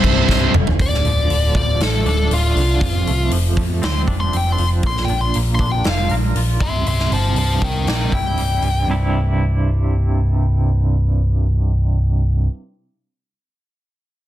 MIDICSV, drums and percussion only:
0, 0, Header, 1, 2, 480
1, 0, Start_track
1, 0, Tempo, 505902
1, 755, Time_signature, 4, 2, 24, 8
1, 13543, End_track
2, 0, Start_track
2, 0, Title_t, "Drums"
2, 35, Note_on_c, 9, 36, 88
2, 38, Note_on_c, 9, 49, 64
2, 130, Note_off_c, 9, 36, 0
2, 133, Note_off_c, 9, 49, 0
2, 272, Note_on_c, 9, 36, 86
2, 283, Note_on_c, 9, 38, 66
2, 367, Note_off_c, 9, 36, 0
2, 378, Note_off_c, 9, 38, 0
2, 515, Note_on_c, 9, 45, 95
2, 610, Note_off_c, 9, 45, 0
2, 637, Note_on_c, 9, 43, 93
2, 732, Note_off_c, 9, 43, 0
2, 754, Note_on_c, 9, 36, 100
2, 761, Note_on_c, 9, 46, 60
2, 849, Note_off_c, 9, 36, 0
2, 856, Note_off_c, 9, 46, 0
2, 893, Note_on_c, 9, 38, 33
2, 988, Note_off_c, 9, 38, 0
2, 993, Note_on_c, 9, 46, 48
2, 1088, Note_off_c, 9, 46, 0
2, 1233, Note_on_c, 9, 46, 61
2, 1328, Note_off_c, 9, 46, 0
2, 1469, Note_on_c, 9, 36, 84
2, 1564, Note_off_c, 9, 36, 0
2, 1711, Note_on_c, 9, 46, 60
2, 1722, Note_on_c, 9, 38, 105
2, 1806, Note_off_c, 9, 46, 0
2, 1817, Note_off_c, 9, 38, 0
2, 1953, Note_on_c, 9, 46, 48
2, 2048, Note_off_c, 9, 46, 0
2, 2191, Note_on_c, 9, 46, 68
2, 2286, Note_off_c, 9, 46, 0
2, 2434, Note_on_c, 9, 46, 51
2, 2529, Note_off_c, 9, 46, 0
2, 2667, Note_on_c, 9, 36, 101
2, 2675, Note_on_c, 9, 46, 62
2, 2762, Note_off_c, 9, 36, 0
2, 2770, Note_off_c, 9, 46, 0
2, 2915, Note_on_c, 9, 46, 51
2, 3009, Note_off_c, 9, 46, 0
2, 3144, Note_on_c, 9, 46, 68
2, 3239, Note_off_c, 9, 46, 0
2, 3387, Note_on_c, 9, 36, 80
2, 3394, Note_on_c, 9, 46, 48
2, 3482, Note_off_c, 9, 36, 0
2, 3489, Note_off_c, 9, 46, 0
2, 3631, Note_on_c, 9, 46, 66
2, 3642, Note_on_c, 9, 38, 103
2, 3725, Note_off_c, 9, 46, 0
2, 3737, Note_off_c, 9, 38, 0
2, 3867, Note_on_c, 9, 36, 74
2, 3869, Note_on_c, 9, 46, 46
2, 3962, Note_off_c, 9, 36, 0
2, 3964, Note_off_c, 9, 46, 0
2, 4108, Note_on_c, 9, 46, 60
2, 4203, Note_off_c, 9, 46, 0
2, 4347, Note_on_c, 9, 46, 48
2, 4442, Note_off_c, 9, 46, 0
2, 4581, Note_on_c, 9, 46, 58
2, 4586, Note_on_c, 9, 36, 100
2, 4675, Note_off_c, 9, 46, 0
2, 4681, Note_off_c, 9, 36, 0
2, 4715, Note_on_c, 9, 38, 31
2, 4810, Note_off_c, 9, 38, 0
2, 4819, Note_on_c, 9, 46, 45
2, 4914, Note_off_c, 9, 46, 0
2, 5063, Note_on_c, 9, 46, 60
2, 5158, Note_off_c, 9, 46, 0
2, 5305, Note_on_c, 9, 36, 81
2, 5305, Note_on_c, 9, 46, 41
2, 5399, Note_off_c, 9, 36, 0
2, 5400, Note_off_c, 9, 46, 0
2, 5543, Note_on_c, 9, 46, 61
2, 5554, Note_on_c, 9, 38, 99
2, 5638, Note_off_c, 9, 46, 0
2, 5649, Note_off_c, 9, 38, 0
2, 5781, Note_on_c, 9, 46, 47
2, 5876, Note_off_c, 9, 46, 0
2, 6030, Note_on_c, 9, 46, 60
2, 6125, Note_off_c, 9, 46, 0
2, 6267, Note_on_c, 9, 36, 97
2, 6267, Note_on_c, 9, 46, 47
2, 6362, Note_off_c, 9, 36, 0
2, 6362, Note_off_c, 9, 46, 0
2, 6512, Note_on_c, 9, 46, 62
2, 6607, Note_off_c, 9, 46, 0
2, 6638, Note_on_c, 9, 38, 28
2, 6732, Note_off_c, 9, 38, 0
2, 6753, Note_on_c, 9, 46, 49
2, 6847, Note_off_c, 9, 46, 0
2, 6984, Note_on_c, 9, 46, 65
2, 7078, Note_off_c, 9, 46, 0
2, 7227, Note_on_c, 9, 46, 45
2, 7228, Note_on_c, 9, 36, 78
2, 7322, Note_off_c, 9, 46, 0
2, 7323, Note_off_c, 9, 36, 0
2, 7468, Note_on_c, 9, 46, 61
2, 7479, Note_on_c, 9, 38, 98
2, 7563, Note_off_c, 9, 46, 0
2, 7574, Note_off_c, 9, 38, 0
2, 7707, Note_on_c, 9, 36, 65
2, 7711, Note_on_c, 9, 46, 47
2, 7802, Note_off_c, 9, 36, 0
2, 7806, Note_off_c, 9, 46, 0
2, 7945, Note_on_c, 9, 46, 63
2, 8040, Note_off_c, 9, 46, 0
2, 8181, Note_on_c, 9, 46, 45
2, 8276, Note_off_c, 9, 46, 0
2, 13543, End_track
0, 0, End_of_file